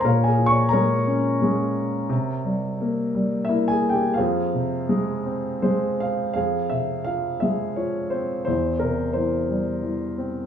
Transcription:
<<
  \new Staff \with { instrumentName = "Grand piano" } { \time 3/4 \key f \minor \tempo 4 = 87 << { \tuplet 3/2 { bes''8 aes''8 des'''8 } bes''2~ | bes''2 \tuplet 3/2 { e''8 aes''8 g''8 } | f''2 c''8 f''8 | f''8 e''8 f''8 e''8 des''8 c''8 |
c''8 bes'8 c''4 r4 | } \\ { \tuplet 3/2 { <bes' des'' f''>8 aes'8 des''8 } <bes' des''>2~ | <bes' des''>2 \tuplet 3/2 { e'8 aes'8 g'8 } | <f' aes' c''>2 r4 | aes'4. r4. |
e'4. r4. | } >> }
  \new Staff \with { instrumentName = "Grand piano" } { \clef bass \time 3/4 \key f \minor bes,8 f8 aes8 des'8 aes4 | c8 g8 bes8 g8 bes4 | f,8 c8 aes8 c'8 aes4 | f,8 c8 f8 aes8 f8 c'8 |
e,8 c8 e8 g8 e8 c'8 | }
>>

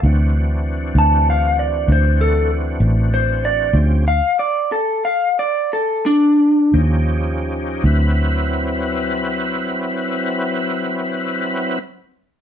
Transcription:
<<
  \new Staff \with { instrumentName = "Clean electric guitar" } { \time 12/8 \key d \mixolydian \tempo 4. = 59 r4. a''8 f''8 d''8 c''8 a'8 r4 c''8 d''8 | r8 f''8 d''8 a'8 f''8 d''8 a'8 d'4 r4. | r1. | }
  \new Staff \with { instrumentName = "Tonewheel organ" } { \time 12/8 \key d \mixolydian <e c' d' fis'>1. | <f c' cis' g'>8 r1 <f des' ees' g'>4. | <fis c' e' b'>1. | }
  \new Staff \with { instrumentName = "Fingered electric bass" } { \clef bass \time 12/8 \key d \mixolydian d,4. d,4. d,4. a,,4. | d,4 r2. r8 ees,4. | d,1. | }
>>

